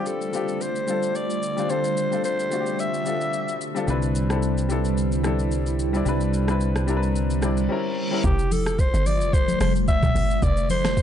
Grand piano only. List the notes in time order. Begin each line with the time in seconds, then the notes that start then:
Already playing: G3 C4 D4 F4 G4 A4
0.33 G3 C4 D4 F4 G4
0.87 G3 C4 D4 F4 A4
1.57 G3 C4 D4 F4 C5
1.69 G3 C4 D4 F4 A4
2.11 G3 C4 D4 F4 A4
2.51 G3 C4 D4 F4 F#4
2.60 G4
3.05 G3 C4 D4 F4 A4
3.75 G3 C4 D4 F4 A4
3.87 G3 C4 D4 E4 B4
4.29 G3 C4 D4 E4 A4
4.69 G3 C4 D4 E4 A4
5.23 G3 C4 D4 E4 A4
5.93 G3 C4 D4 E4 D5
6.05 G3 C4 D4 E4 B4
6.47 G3 C4 D4 E4 B4
6.87 G3 C4 D4 E4 A#4
6.97 B4
7.42 G3 C4 D4 E4 D5
7.69 G3 C4 C#4 E4 A#4
8.11 G3 C4 C#4 E4 A#4